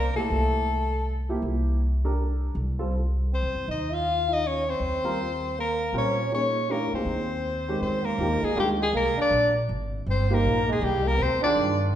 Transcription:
Already playing: upright bass C2, trombone A#3, soprano saxophone A#4
0.15 upright piano A#2 F3 E4 G4, trombone A3, soprano saxophone A4, muted upright bass stroke
0.30 upright bass C2
1.29 upright piano F3 A#3 E4 G4
1.42 upright bass C2
2.05 upright piano D4 G4 A4 A#4
2.55 upright bass C2
2.79 upright piano G3 C4 F4 A4
3.32 trombone C4, soprano saxophone C5
3.43 upright bass D2
3.55 upright bass C2
3.68 upright bass D#2, trombone D#4, soprano saxophone D#5
3.93 trombone F4, soprano saxophone F5
4.31 trombone D#4, soprano saxophone D#5
4.46 trombone C#4, soprano saxophone C#5
4.69 trombone C4, soprano saxophone C5
4.80 upright bass D#2
5.04 upright piano G3 C4 F4 A#4
5.59 trombone A#3, soprano saxophone A#4
5.93 upright bass A#2, upright piano G3 C4 F4 A#4, trombone C#4
5.98 soprano saxophone C#5
6.31 upright piano F3 A#3 D#4 G#4, trombone C#4, soprano saxophone C#5
6.69 upright piano E3 A3 D4 G4, trombone A#3, soprano saxophone A#4
6.93 upright piano F3 A#3 D#4 G#4, trombone C4, soprano saxophone C5, muted upright bass stroke
7.05 upright bass D#2
7.68 upright piano D#3 G#3 C#4 G4
7.81 upright bass E2, trombone C4, soprano saxophone C5
8.05 trombone A#3, soprano saxophone A#4
8.18 upright bass D#2, upright piano F3 A#3 D#4 G4
8.42 trombone G#3, soprano saxophone G#4, muted upright bass stroke
8.55 upright bass D2, upright piano D#3 G#3 D4 F4, trombone G3
8.60 soprano saxophone G4
8.80 trombone G#3, soprano saxophone G#4
8.93 upright bass C2, trombone A#3
8.97 soprano saxophone A#4
9.16 trombone D4, muted upright bass stroke
9.21 soprano saxophone D5
9.30 upright bass A#1
9.69 upright bass G#1
10.06 upright bass G1, trombone C4
10.11 soprano saxophone C5
10.30 upright piano F3 A#3 D#4 G4, trombone A#3, soprano saxophone A#4
10.44 upright bass A#1
10.69 trombone G#3, soprano saxophone G#4
10.81 upright bass C2, trombone G3, soprano saxophone G4
11.06 trombone A#3, soprano saxophone A#4
11.19 upright bass D2, trombone C4, soprano saxophone C5
11.42 upright piano D#3 D4 F4 G#4, trombone D4, soprano saxophone D5
11.56 upright bass G2

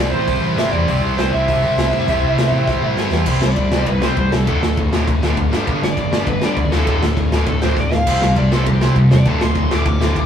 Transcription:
Already playing: picked electric bass C2, distorted electric guitar C3 G3 C4 E4 G4 C5, lead electric guitar D5
0.11 picked electric bass A1, overdriven electric guitar G3 C4, lead electric guitar C5
0.16 overdriven electric guitar C3
0.28 picked electric bass C2, kick, open hi-hat
0.41 picked electric bass A1, distorted electric guitar G3 C4 E4 G4 C5
0.45 distorted electric guitar C3
0.56 picked electric bass G1, distorted electric guitar C3 G3 C4 E4 G4 C5, lead electric guitar E5, snare, open hi-hat
0.71 picked electric bass E2, lead electric guitar D5, kick
0.86 picked electric bass C2, distorted electric guitar C3 G3 C4 E4 G4 C5, kick, open hi-hat
1.02 picked electric bass C2
1.17 picked electric bass C2, lead electric guitar C5, snare, open hi-hat
1.32 picked electric bass C2, overdriven electric guitar C3 G3 C4, lead electric guitar E5
1.48 picked electric bass C2, kick, open hi-hat
1.62 picked electric bass G1, distorted electric guitar C3 G3 C4 E4 G4 C5
1.76 picked electric bass C2, distorted electric guitar C3 G3 C4 E4, snare, open hi-hat
1.81 distorted electric guitar G4 C5
1.93 picked electric bass A2, kick
2.08 picked electric bass C2, distorted electric guitar C3 G3 C4 E4 G4 C5, kick, open hi-hat
2.22 picked electric bass C2
2.36 picked electric bass C2, snare, open hi-hat
2.51 picked electric bass A1, overdriven electric guitar G3 C4
2.55 overdriven electric guitar C3
2.67 picked electric bass C2, kick, snare
2.81 picked electric bass A1, distorted electric guitar C4 E4 G4 C5
2.85 distorted electric guitar C3 G3
2.95 picked electric bass G1, distorted electric guitar C3 G3 C4 E4, snare
3.00 distorted electric guitar G4 C5
3.11 picked electric bass E2, snare
3.26 picked electric bass C2, distorted electric guitar C3 G3 C4 E4 G4 C5, kick, crash
3.41 picked electric bass C2, distorted electric guitar C3 G3, lead electric guitar D5, snare
3.56 picked electric bass C2, distorted electric guitar C3 G3, kick, ride
3.72 picked electric bass C2, distorted electric guitar C3 G3 C4, snare
3.86 picked electric bass C2, distorted electric guitar C3 G3, lead electric guitar B4, kick, ride
4.02 distorted electric guitar C3 G3 C4, lead electric guitar C5, snare
4.17 picked electric bass C2, distorted electric guitar C3 G3, lead electric guitar C5, kick, ride
4.31 picked electric bass C2, distorted electric guitar C3 G3, lead electric guitar A4, snare
4.47 picked electric bass D1, distorted electric guitar D2 A2 D3 A3 F#4, lead electric guitar A4, kick, ride
4.62 picked electric bass D1, distorted electric guitar D2 A2, snare
4.77 picked electric bass D1, distorted electric guitar D2 A2, kick, ride
4.92 picked electric bass D1, distorted electric guitar D2 A2 D3, snare
5.07 picked electric bass D1, distorted electric guitar D2 A2, kick, ride
5.21 picked electric bass D1, distorted electric guitar D2 A2 D3, snare
5.36 picked electric bass D1, distorted electric guitar D2 A2, kick, ride
5.51 picked electric bass G1, distorted electric guitar G2 D3 G3 B3 D4 G4, snare
5.66 picked electric bass G1, distorted electric guitar G2 D3 G3, kick, ride
5.82 picked electric bass G1, distorted electric guitar G2 D3, lead electric guitar D5, snare
5.97 picked electric bass G1, distorted electric guitar G2 D3, kick, ride
6.11 picked electric bass G1, distorted electric guitar G2 D3 G3, snare
6.27 picked electric bass G1, distorted electric guitar G2 D3, lead electric guitar B4, kick, ride
6.41 distorted electric guitar G2 D3 G3, lead electric guitar D5, snare
6.56 picked electric bass C#2, distorted electric guitar G2 D3, lead electric guitar D5, kick, ride
6.71 picked electric bass D1, distorted electric guitar D2 A2 D3 A3 F#4, lead electric guitar A4, snare
6.86 picked electric bass D1, distorted electric guitar D2 A2 D3, lead electric guitar A4, kick, ride
7.01 picked electric bass D1, distorted electric guitar D2 A2, snare
7.17 picked electric bass D1, distorted electric guitar D2 A2, kick, ride
7.31 picked electric bass D1, distorted electric guitar D2 A2 D3, snare
7.46 picked electric bass D1, distorted electric guitar D2 A2, lead electric guitar A4, kick, ride
7.62 picked electric bass D1, distorted electric guitar D2 A2 D3, lead electric guitar C5, snare
7.77 picked electric bass D1, distorted electric guitar D2 A2, lead electric guitar D5, kick, snare
7.91 picked electric bass D1, distorted electric guitar D2 A2, lead electric guitar F5, snare
8.07 picked electric bass C2, distorted electric guitar C3 G3 C4 E4 G4 C5, kick, crash
8.22 picked electric bass C2, distorted electric guitar C3 G3, snare
8.36 picked electric bass C2, distorted electric guitar C3 G3, lead electric guitar D5, kick, ride
8.51 picked electric bass C2, distorted electric guitar C3 G3 C4, lead electric guitar A4, snare
8.66 picked electric bass C2, distorted electric guitar C3 G3, lead electric guitar G4, kick, ride
8.80 distorted electric guitar C3 G3 C4, snare
8.96 picked electric bass C2, distorted electric guitar C3 G3, kick, ride
9.10 picked electric bass E1, distorted electric guitar C3 G3, lead electric guitar D5, snare
9.25 picked electric bass D1, distorted electric guitar D2 A2 D3 A3 F#4, lead electric guitar A5, kick, ride
9.40 picked electric bass D1, distorted electric guitar D2 A2, lead electric guitar C6, snare
9.55 picked electric bass D1, distorted electric guitar D2 A2, kick, ride
9.70 picked electric bass D1, distorted electric guitar D2 A2 D3, lead electric guitar D6, snare
9.85 picked electric bass D1, distorted electric guitar D2 A2, lead electric guitar D6, kick, ride
9.99 picked electric bass D1, distorted electric guitar D2 A2 D3, snare
10.14 picked electric bass D1, distorted electric guitar D2 A2, kick, ride

